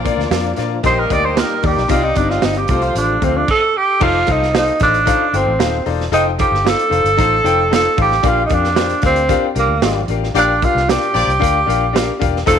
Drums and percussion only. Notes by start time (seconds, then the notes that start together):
0.06 kick, closed hi-hat
0.20 snare
0.31 snare, closed hi-hat
0.44 closed hi-hat
0.56 snare, closed hi-hat
0.84 kick, closed hi-hat
1.10 kick, closed hi-hat
1.37 snare, closed hi-hat
1.63 kick, open hi-hat
1.78 snare
1.89 kick, closed hi-hat
2.15 kick, closed hi-hat
2.30 snare
2.42 snare, closed hi-hat
2.55 closed hi-hat
2.68 kick, closed hi-hat
2.82 closed hi-hat
2.95 closed hi-hat
3.22 kick, closed hi-hat
3.48 kick, crash
4.01 kick, crash
4.27 kick, closed hi-hat
4.42 snare
4.55 snare, closed hi-hat
4.67 closed hi-hat
4.80 kick, snare, closed hi-hat
4.94 closed hi-hat
5.07 kick, closed hi-hat
5.34 closed hi-hat
5.60 snare, closed hi-hat
5.86 open hi-hat
6.01 snare
6.12 closed hi-hat
6.39 kick, closed hi-hat
6.54 snare
6.67 snare, closed hi-hat
6.79 closed hi-hat
6.92 closed hi-hat
7.05 closed hi-hat
7.19 kick, closed hi-hat
7.46 closed hi-hat
7.73 snare, closed hi-hat
7.97 kick, open hi-hat
8.12 snare
8.23 kick, closed hi-hat
8.50 kick, closed hi-hat
8.64 snare
8.76 snare, closed hi-hat
8.90 closed hi-hat
9.02 kick, snare, closed hi-hat
9.16 closed hi-hat
9.29 kick, closed hi-hat
9.56 closed hi-hat
9.82 snare, closed hi-hat
10.08 closed hi-hat
10.24 snare
10.35 closed hi-hat
10.62 kick, closed hi-hat
10.77 snare
10.89 snare, closed hi-hat
11.03 closed hi-hat
11.16 closed hi-hat
11.30 closed hi-hat
11.42 kick, closed hi-hat
11.70 closed hi-hat
11.96 snare, closed hi-hat
12.22 kick, closed hi-hat
12.36 snare
12.47 kick, closed hi-hat